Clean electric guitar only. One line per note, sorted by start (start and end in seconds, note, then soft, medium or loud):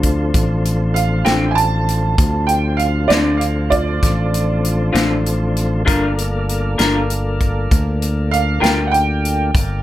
1.25 1.45 D3 medium
1.25 1.45 A3 medium
1.25 1.44 C4 medium
1.25 1.44 F4 medium
3.09 3.29 D3 medium
3.09 3.29 A3 medium
3.09 3.28 C4 medium
3.09 3.28 F4 medium
4.93 5.13 D3 medium
4.93 5.13 A3 medium
4.93 5.12 C4 medium
4.93 5.12 F4 medium
5.85 6.04 G3 medium
5.85 6.04 D4 medium
5.85 6.05 F4 medium
5.85 6.05 A#4 medium
6.78 6.97 G3 medium
6.78 6.97 D4 medium
6.78 6.97 F4 medium
6.78 6.97 A#4 medium
8.60 8.80 G3 medium
8.60 8.80 D4 medium
8.60 8.80 F4 medium
8.60 8.80 A#4 medium